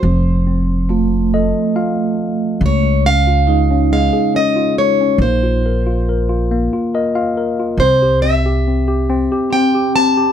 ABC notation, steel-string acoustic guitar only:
X:1
M:3/4
L:1/8
Q:1/4=70
K:Db
V:1 name="Steel-string acoustic guitar"
c4- c z | d f2 f e d | c3 z3 | c =e3 =g =a |]